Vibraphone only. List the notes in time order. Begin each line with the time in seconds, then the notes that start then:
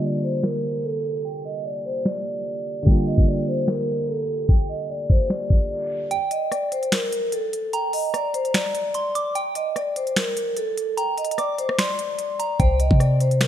0.03 D5
0.23 C5
0.44 A#4
0.84 A4
1.25 G5
1.45 D#5
1.65 D5
1.85 C5
2.87 G5
3.07 D#5
3.27 D5
3.47 C5
3.68 A#4
4.08 A4
4.49 G5
4.69 D#5
4.89 D5
5.10 C5
6.11 G5
6.31 D#5
6.52 D5
6.72 C5
6.92 A#4
7.33 A4
7.73 G5
7.94 D#5
8.14 D5
8.34 C5
8.54 D5
9.35 G5
9.56 D#5
9.76 D5
9.96 C5
10.16 A#4
10.57 A4
10.98 G5
11.18 D#5
11.38 D5
11.58 C5
12.60 C5
12.80 D#5
13.00 D5
13.21 C5